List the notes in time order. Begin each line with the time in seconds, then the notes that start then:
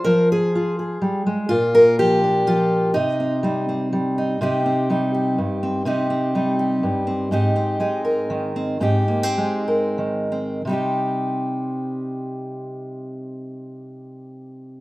Already playing: F4 C5
0.04 F3 A#4
0.32 G#4
0.55 F4
0.79 G#4
1.02 G3
1.26 G#3
1.49 A#2 F4
1.75 A#4
1.99 F3 G4
2.24 D4
2.47 F3 F4
2.94 C3 D#4
3.20 C4
3.43 G3 C4
3.69 C4
3.93 G3
4.18 D#4
4.41 C3 C4 D#4 G4
4.66 C4
4.90 G3 D#4
5.14 G4
5.38 G2
5.63 C4
5.85 C3 C4 D#4 G4
6.10 C4
6.35 G3 D#4
6.59 G4
6.83 G2
7.07 C4
7.31 G#2 C4 D#4 G4
7.56 C4
7.80 G#3 D#4
8.05 A#4
8.30 D#3
8.56 C4
8.80 G#2 C4 D#4 G4
9.08 A#3
9.23 C4
9.38 G#3 D#4
9.68 A#4
9.98 D#3
10.32 C4
10.65 C3 G3
10.69 C4 D#4 G4